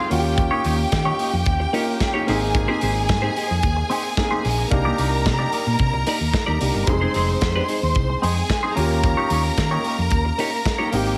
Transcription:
Already playing: grand piano G#3 C4 D#4 G4, clean electric guitar C5
0.00 clean electric guitar C4 D#4 G#4
0.09 fingered electric bass D#2, grand piano A#3 C#4 F4 F#4, violin section G4 G5, muted clean electric guitar stroke, open hi-hat
0.19 grand piano G4
0.24 muted clean electric guitar stroke
0.38 muted clean electric guitar stroke, kick, closed hi-hat
0.51 clean electric guitar A#3 D#4 G4 C#5
0.64 fingered electric bass D#2, clean electric guitar A#3 D#4 G4 C#5, open hi-hat
0.78 muted clean electric guitar stroke
0.92 fingered electric bass D#3, muted clean electric guitar stroke, kick, snare, closed hi-hat
1.05 clean electric guitar A#3 D#4 G4 C#5
1.19 clean electric guitar A#3 D#4 G4 C#5, open hi-hat
1.32 fingered electric bass F2, muted clean electric guitar stroke
1.46 fingered electric bass D#2, kick, closed hi-hat
1.60 muted clean electric guitar stroke
1.73 grand piano A#3 C#4 F4 A#4, clean electric guitar A#3 D#4 G4 C#5, open hi-hat
1.87 muted clean electric guitar stroke
2.00 muted clean electric guitar stroke, kick, snare, closed hi-hat
2.14 clean electric guitar A#3 D#4 G4 C#5
2.26 fingered electric bass G#1, grand piano A#3 C4 D#4 G#4, clean electric guitar C4 D#4 G4 C5, violin section G#4 G#5, open hi-hat
2.42 muted clean electric guitar stroke
2.55 muted clean electric guitar stroke, kick, closed hi-hat
2.68 clean electric guitar C4 D#4 G4 C5
2.81 fingered electric bass G#1, clean electric guitar C4 D#4 G4 C5, open hi-hat
2.95 muted clean electric guitar stroke
3.09 fingered electric bass G#2, muted clean electric guitar stroke, kick, snare, closed hi-hat
3.22 clean electric guitar C4 D#4 G4 C5
3.36 clean electric guitar C4 D#4 G4 C5, open hi-hat
3.49 fingered electric bass F2, muted clean electric guitar stroke
3.63 fingered electric bass D#2, kick, closed hi-hat
3.76 muted clean electric guitar stroke
3.90 clean electric guitar C4 D#4 G4 C5, open hi-hat
4.04 muted clean electric guitar stroke
4.17 grand piano A#3 C4 D#4 G#4, muted clean electric guitar stroke, kick, snare, closed hi-hat
4.31 clean electric guitar C4 D#4 G4 C5
4.44 fingered electric bass A#1, muted clean electric guitar stroke, open hi-hat
4.58 muted clean electric guitar stroke
4.70 fingered electric bass C2, grand piano A#3 D4 D#4 G4, violin section A#4 A#5, muted clean electric guitar stroke, kick, closed hi-hat
4.85 clean electric guitar A#3 D#4 G4 D5
4.98 fingered electric bass C2, clean electric guitar A#3 D#4 G4 D5, open hi-hat
5.12 muted clean electric guitar stroke
5.26 fingered electric bass C3, muted clean electric guitar stroke, kick, snare, closed hi-hat
5.39 clean electric guitar A#3 D#4 G4 D5
5.52 clean electric guitar A#3 D#4 G4 D5, open hi-hat
5.66 fingered electric bass A#2, muted clean electric guitar stroke
5.79 fingered electric bass C3, kick, closed hi-hat
5.93 fingered electric bass C2, muted clean electric guitar stroke
6.07 clean electric guitar A#3 D#4 G4 D5, open hi-hat
6.20 fingered electric bass D#2, muted clean electric guitar stroke
6.33 muted clean electric guitar stroke, kick, snare, closed hi-hat
6.46 fingered electric bass D#2, clean electric guitar A#3 D#4 G4 D5
6.60 fingered electric bass C2, grand piano A#3 D4 D#4 G4, muted clean electric guitar stroke, open hi-hat
6.74 fingered electric bass G1, muted clean electric guitar stroke
6.86 fingered electric bass F1, grand piano G3 C4 D#4 G#4, violin section C5 C6, muted clean electric guitar stroke, kick, closed hi-hat
6.93 grand piano G#3
7.01 clean electric guitar C4 D#4 G#4 C5
7.14 fingered electric bass F1, clean electric guitar C4 D#4 G#4 C5, open hi-hat
7.29 muted clean electric guitar stroke
7.41 fingered electric bass F2, muted clean electric guitar stroke, kick, snare, closed hi-hat
7.56 clean electric guitar C4 D#4 G#4 C5
7.69 clean electric guitar C4 D#4 G#4 C5, open hi-hat
7.82 fingered electric bass D#2, muted clean electric guitar stroke
7.95 fingered electric bass C2, kick, closed hi-hat
8.09 muted clean electric guitar stroke
8.22 fingered electric bass F2, clean electric guitar C4 D#4 G#4 C5, violin section G#4 G#5, open hi-hat
8.36 muted clean electric guitar stroke
8.49 muted clean electric guitar stroke, kick, snare, closed hi-hat
8.63 clean electric guitar C4 D#4 G#4 C5
8.75 fingered electric bass D#2, grand piano A#3 C#4 F4 G4, violin section A#4 A#5, muted clean electric guitar stroke, open hi-hat
8.91 muted clean electric guitar stroke
9.03 muted clean electric guitar stroke, kick, closed hi-hat
9.17 clean electric guitar A#3 D#4 G4 C#5
9.30 fingered electric bass D#2, clean electric guitar A#3 D#4 G4 C#5, open hi-hat
9.45 muted clean electric guitar stroke
9.57 fingered electric bass D#3, muted clean electric guitar stroke, kick, snare, closed hi-hat
9.71 clean electric guitar A#3 D#4 G4 C#5
9.84 clean electric guitar A#3 D#4 G4 C#5, open hi-hat
9.98 fingered electric bass F2, muted clean electric guitar stroke
10.10 fingered electric bass D#2, kick, closed hi-hat
10.25 muted clean electric guitar stroke
10.38 clean electric guitar A#3 D#4 G4 C#5, open hi-hat
10.52 muted clean electric guitar stroke
10.65 muted clean electric guitar stroke, kick, snare, closed hi-hat
10.78 clean electric guitar A#3 D#4 G4 C#5
10.92 fingered electric bass G#1, grand piano A#3 C4 D#4 G4, violin section G4 G5, open hi-hat
11.06 muted clean electric guitar stroke

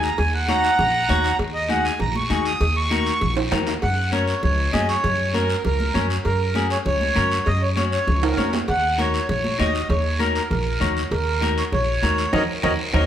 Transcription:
Already playing: upright bass D#2
0.03 accordion A#5, short guiro
0.18 upright bass D#2, accordion G#5, cowbell, long guiro
0.34 accordion F#5
0.48 clean electric guitar D#4 F#4 C#5, accordion F#5 A#5, cowbell, high conga, short guiro
0.64 short guiro
0.79 upright bass A#1, cowbell, low conga, long guiro
1.09 upright bass D#2, clean electric guitar D#4 F#4 C#5, cowbell, high conga, low timbale, short guiro
1.24 short guiro
1.39 upright bass D#2, cowbell, long guiro
1.54 accordion D#5
1.69 clean electric guitar D#4 F#4 G#4, accordion F#5, cowbell, high conga, short guiro
1.85 accordion G#5, short guiro
1.99 upright bass A#1, accordion A#5, cowbell, low conga, long guiro
2.15 accordion C#6, high conga
2.30 upright bass D#2, clean electric guitar D#4 F#4 G#4, cowbell, high conga, short guiro
2.45 accordion D#6, short guiro
2.60 upright bass D#2, cowbell, long guiro
2.77 accordion C#6
2.91 clean electric guitar D#4 F#4 A#4, cowbell, high conga, short guiro
3.06 short guiro
3.21 upright bass A#1, cowbell, low conga, long guiro
3.37 high timbale
3.51 upright bass D#2, clean electric guitar D#4 F#4 A#4, cowbell, high conga, low conga, high timbale, short guiro
3.67 low timbale, short guiro
3.82 upright bass F#2, accordion F#5, cowbell, long guiro
4.12 clean electric guitar C#4 F#4 A#4, accordion C#5, cowbell, high conga, short guiro
4.28 short guiro
4.43 upright bass C#2, accordion C#5, cowbell, low conga, long guiro
4.73 upright bass F#2, clean electric guitar C#4 F#4 G#4, accordion D#5, cowbell, high conga, low timbale, short guiro
4.89 accordion C#5, short guiro
5.04 upright bass F#2, cowbell, low conga, long guiro
5.33 clean electric guitar C#4 F#4 A#4, accordion A#4, cowbell, high conga, short guiro
5.50 short guiro
5.64 upright bass C#2, accordion A#4, cowbell, low conga, long guiro
5.80 high conga
5.94 upright bass F#2, clean electric guitar C#4 F#4 C#5, cowbell, high conga, low conga, short guiro
6.10 short guiro
6.25 upright bass F#2, accordion A#4, cowbell, long guiro
6.55 clean electric guitar C#4 F#4 G#4, cowbell, high conga, short guiro
6.70 accordion C#5, short guiro
6.86 upright bass C#2, accordion C#5, cowbell, low conga, long guiro
7.01 high conga
7.15 upright bass F#2, clean electric guitar C#4 F#4 A#4, cowbell, high conga, short guiro
7.32 short guiro
7.46 upright bass F#2, accordion D#5, cowbell, long guiro
7.63 accordion C#5
7.76 clean electric guitar C#4 F#4 C#5, accordion C#5, cowbell, high conga, short guiro
7.92 accordion C#5, short guiro
8.07 upright bass C#2, cowbell, low conga, long guiro
8.23 accordion A#4, high timbale
8.33 clean electric guitar C#4, high timbale
8.38 upright bass F2, clean electric guitar F#4 C#5, cowbell, high conga, short guiro
8.53 low timbale, short guiro
8.68 upright bass D#2, accordion F#5, cowbell, long guiro
8.98 clean electric guitar D#4 F#4 A#4, accordion C#5, cowbell, high conga, short guiro
9.14 short guiro
9.29 upright bass A#1, accordion C#5, cowbell, low conga, long guiro
9.44 high conga
9.58 upright bass D#2, clean electric guitar D#4 F#4 C#5, accordion D#5, cowbell, high conga, low timbale, short guiro
9.75 short guiro
9.89 upright bass D#2, accordion C#5, cowbell, low conga, long guiro
10.19 clean electric guitar D#4 F#4 A#4, accordion A#4, cowbell, high conga, short guiro
10.35 accordion A#4, short guiro
10.50 upright bass A#1, accordion A#4, cowbell, low conga, long guiro
10.80 upright bass D#2, clean electric guitar D#4 F#4 C#5, cowbell, high conga, low conga, short guiro
10.97 short guiro
11.11 upright bass D#2, accordion A#4, cowbell, long guiro
11.41 clean electric guitar D#4 F#4 A#4, cowbell, high conga, short guiro
11.57 accordion C#5, short guiro
11.72 upright bass A#1, accordion C#5, cowbell, low conga, long guiro
12.02 upright bass D#2, clean electric guitar D#4 F#4 A#4, cowbell, high conga, short guiro
12.18 short guiro
12.33 upright bass D#2, clean electric guitar D#4 F#4 A#4, accordion A#4 C#5 D#5, low conga, high timbale, long guiro
12.63 upright bass D#2, clean electric guitar D#4 F#4 A#4, accordion A#4 C#5 D#5, low conga, high timbale, long guiro
12.93 upright bass D#2, clean electric guitar D#4 F#4 A#4, accordion A#4 C#5 D#5, low conga, high timbale, long guiro

